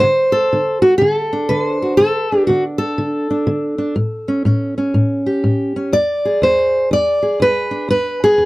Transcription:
0.00 D3 C5
0.32 A4
0.53 D3
0.82 F#4
0.98 D3 G#4
1.15 A4
1.33 D4
1.49 D3 B4
1.63 C5
1.82 F#4
1.97 D3 A4
2.22 B4
2.32 D4
2.47 D3 F#4
2.78 A4
2.98 D3
3.31 D4
3.47 D3
3.78 D4
3.96 A2
4.28 C#4
4.45 A2 C#4
4.78 C#4
4.94 A2
5.26 G4
5.44 A2
5.76 C#4
5.93 E2 D5
6.25 G#4
6.42 E2 C5
6.91 E2 D5
7.22 G#4
7.40 E2 B4
7.71 D4
7.88 E2 B4
8.24 G#4
8.38 E2

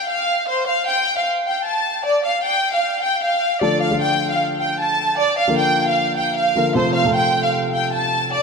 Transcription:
0.09 F5
0.48 C5
0.68 F5
0.87 G5
1.17 F5
1.46 G5
1.66 A5
2.05 D5
2.25 F5
2.44 G5
2.74 F5
3.03 G5
3.23 F5
3.61 D3 F3 A3 F4 A4 D5
3.82 F5
3.91 D3 F3 A3 F4 A4
4.01 G5
4.30 F5
4.60 G5
4.80 A5
5.19 D5
5.38 F5
5.48 D3 F3 A#3 F4 A#4
5.58 G5
5.87 F5
6.17 G5
6.37 F5
6.56 D3 F3 A#3 F4 A#4
6.75 C3 F3 A3 F4 A4 C5
6.95 F5
7.05 C3 F3 A3 F4 A4
7.15 G5
7.44 F5
7.74 G5
7.93 A5
8.32 D5

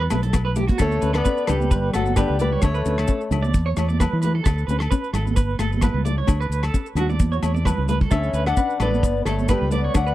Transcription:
0.00 B4
0.10 B1 A3, cross-stick, closed hi-hat, high conga, low agogo, maracas
0.23 A4, closed hi-hat, low conga
0.33 B3, kick, cross-stick, closed hi-hat, low agogo, maracas
0.45 B4
0.56 A3 G4, closed hi-hat, low conga, maracas
0.68 F#4, kick, closed hi-hat, high conga
0.78 D2 A3 D4 A4 C#5, kick, cross-stick, low agogo, maracas
0.92 maracas
1.01 D2 C#4 B4, closed hi-hat, maracas
1.13 B3 A4 B4 D5, cross-stick, low agogo, maracas
1.25 C#4 B4, kick, maracas
1.37 maracas
1.47 C#2 G3 D4 G4 A4 B4, cross-stick, closed hi-hat, low conga, low agogo, maracas
1.60 high conga, maracas
1.71 G1 B4, kick, maracas
1.94 G1 F#3 A3 F#4 A4, cross-stick, closed hi-hat, low agogo, maracas
2.06 high conga, maracas
2.16 D3 B3 D4 G4 B4, kick, cross-stick, low conga, low agogo, maracas
2.30 C#2
2.39 G3 A3 G4 B4 D5, closed hi-hat, low conga, maracas
2.52 C#5
2.62 D2 A3 D4 A4 C#5, kick, cross-stick, low agogo, maracas
2.74 B4, maracas
2.85 D2 C#4, closed hi-hat, maracas
2.98 A4, cross-stick, low agogo, maracas
3.08 C#4, kick, maracas
3.21 maracas
3.31 C#2 D4, closed hi-hat, low conga, low agogo, maracas
3.43 D5, high conga, maracas
3.54 E2, kick, maracas
3.66 C#5
3.77 E2 A3, cross-stick, closed hi-hat, low agogo, maracas
3.89 D5, high conga, maracas
4.00 B3 B4, kick, cross-stick, low conga, low agogo, maracas
4.13 E3
4.22 A3 B4, closed hi-hat, low conga, maracas
4.35 A4
4.44 D2 A4, muted nylon-string guitar stroke, kick, cross-stick, low agogo, maracas
4.58 maracas
4.67 D2 C#4 B4, closed hi-hat, maracas
4.79 A4, cross-stick, low agogo, maracas
4.91 C#4 B4, kick, maracas
5.04 maracas
5.13 G#1 A4, muted nylon-string guitar stroke, cross-stick, closed hi-hat, low conga, low agogo, maracas
5.27 high conga, maracas
5.36 G1 B4, kick, maracas
5.59 G1 A3 A4, cross-stick, closed hi-hat, low agogo, maracas
5.72 high conga, maracas
5.81 B3 B4, kick, cross-stick, low conga, low agogo, maracas
5.94 C#2
6.05 A3 D5, closed hi-hat, low conga, maracas
6.18 C#5
6.27 D2 D4, kick, cross-stick, low agogo, maracas
6.40 B4, maracas
6.50 D2, closed hi-hat, maracas
6.63 A4, cross-stick, low agogo, maracas
6.74 C#4, kick, maracas
6.86 maracas
6.95 D#2 D4 F#4, closed hi-hat, low conga, low agogo, maracas
7.09 D5, high conga, maracas
7.19 E2, kick, high conga, maracas
7.32 C#5, maracas
7.43 E2 A3, cross-stick, closed hi-hat, low agogo, maracas
7.54 D5, high conga, maracas
7.65 B3 B4, kick, cross-stick, low conga, low agogo, maracas
7.78 C#2
7.88 A3 B4, closed hi-hat, low conga, maracas
8.01 A4, kick, maracas
8.11 D2 C#4 D4 A4 C#5 E5, kick, cross-stick, low agogo, maracas
8.23 maracas
8.33 D2 B4, closed hi-hat, maracas
8.46 D4 A4 D5 F#5, cross-stick, low agogo, maracas
8.57 C#4 B4, kick, maracas
8.70 maracas
8.80 A1 B3 D4 A4 B4 D5, cross-stick, closed hi-hat, low conga, low agogo, maracas
8.91 high conga, maracas
9.03 G1, muted clean electric guitar stroke, kick, maracas
9.25 G1 A3 A4 C#5, cross-stick, closed hi-hat, low agogo, maracas
9.38 high conga, maracas
9.48 G3 B3 G4 B4, kick, cross-stick, low conga, low agogo, maracas
9.62 C#2
9.71 A3 B4 D5, closed hi-hat, low conga, maracas
9.76 B3
9.84 C#5
9.94 D2 D4 D5 F#5, kick, cross-stick, low agogo, maracas
10.07 B4, maracas

